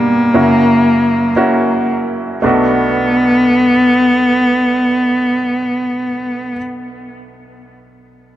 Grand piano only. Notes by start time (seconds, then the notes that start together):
Already playing: G2 B2 D3 G3 D4 G4
0.34 F#2 C#3 A#3 C#4 E4 F#4
1.36 A#3 C#4 E4 F#4
2.42 B1 A3 B3 D4
2.46 F#4